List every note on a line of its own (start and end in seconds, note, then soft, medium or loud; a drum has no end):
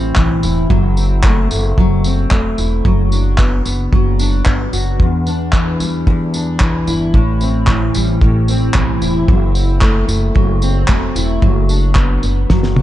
0.00 0.13 A1 loud
0.00 0.76 A2 medium
0.00 0.15 E3 medium
0.00 0.76 G3 medium
0.00 0.97 C4 medium
0.00 0.42 E4 medium
0.16 0.42 B1 loud
0.16 0.69 E3 medium
0.16 kick loud
0.16 clap loud
0.43 0.69 E1 medium
0.43 1.81 E4 medium
0.43 tambourine medium
0.70 1.47 F#1 loud
0.70 1.77 F#3 medium
0.70 kick loud
0.97 2.04 C4 medium
0.97 tambourine medium
1.24 1.50 A3 medium
1.24 kick loud
1.24 clap loud
1.51 1.76 F#1 loud
1.51 2.31 A3 medium
1.51 tambourine medium
1.78 2.28 F#1 loud
1.78 2.85 F#3 medium
1.78 kick loud
2.04 2.91 C4 medium
2.04 tambourine medium
2.31 2.56 E1 medium
2.31 2.91 A3 medium
2.31 kick loud
2.31 clap loud
2.58 2.83 E1 medium
2.58 2.91 E4 medium
2.58 tambourine medium
2.85 3.62 F#1 loud
2.85 3.91 F#3 medium
2.85 kick loud
3.12 4.19 D4 medium
3.12 tambourine medium
3.38 3.65 B3 medium
3.38 kick loud
3.38 clap loud
3.65 3.91 F#1 medium
3.65 4.46 B3 medium
3.65 tambourine medium
3.92 4.42 F#1 loud
3.92 5.05 F#3 medium
3.92 kick loud
4.19 5.27 D4 medium
4.19 tambourine medium
4.46 4.71 G1 medium
4.46 5.80 B3 medium
4.46 kick loud
4.46 clap loud
4.73 4.98 F#1 medium
4.73 5.05 F#4 medium
4.73 tambourine medium
5.00 5.76 E2 loud
5.00 6.07 E2 medium
5.00 kick loud
5.27 6.33 D4 medium
5.27 tambourine medium
5.53 6.61 E3 medium
5.53 kick loud
5.53 clap loud
5.80 6.05 E2 medium
5.80 7.95 G3 medium
5.80 tambourine medium
6.07 6.57 E2 loud
6.07 7.15 E2 medium
6.07 kick loud
6.34 7.20 D4 medium
6.34 tambourine medium
6.60 6.85 B1 medium
6.60 7.68 E3 medium
6.60 kick loud
6.60 clap loud
6.87 7.12 G1 medium
6.87 9.01 E4 medium
6.87 tambourine medium
7.14 7.91 A1 loud
7.14 8.21 A2 medium
7.14 kick loud
7.41 8.49 C4 medium
7.41 tambourine medium
7.67 8.76 E3 medium
7.67 kick loud
7.67 clap loud
7.94 8.19 A1 loud
7.94 9.34 G3 medium
7.94 tambourine medium
8.21 8.71 A1 loud
8.21 9.34 A2 medium
8.21 kick loud
8.48 9.55 C4 medium
8.48 tambourine medium
8.74 9.00 B1 medium
8.74 9.28 E3 medium
8.74 kick loud
8.74 clap loud
9.02 9.26 E1 medium
9.02 10.38 E4 medium
9.02 tambourine medium
9.28 10.05 F#1 loud
9.28 10.34 F#3 medium
9.28 kick loud
9.55 10.61 C4 medium
9.55 tambourine medium
9.81 10.07 A3 medium
9.81 kick loud
9.81 clap loud
10.08 10.33 F#1 loud
10.08 10.88 A3 medium
10.08 tambourine medium
10.35 10.85 F#1 loud
10.35 11.42 F#3 medium
10.35 kick loud
10.62 11.48 C4 medium
10.62 tambourine medium
10.88 11.48 A3 medium
10.88 kick loud
10.88 clap loud
11.15 11.40 E1 medium
11.15 11.48 E4 medium
11.15 tambourine medium
11.42 12.19 F#1 loud
11.42 12.49 F#3 medium
11.42 kick loud
11.69 12.77 D4 medium
11.69 tambourine medium
11.95 12.23 B3 medium
11.95 kick loud
11.95 clap loud
12.23 12.48 F#1 medium
12.23 12.82 B3 medium
12.23 tambourine medium
12.50 12.82 F#1 loud
12.50 12.82 F#3 medium
12.50 kick loud
12.50 snare medium
12.63 snare medium
12.76 12.82 D4 medium
12.76 high tom medium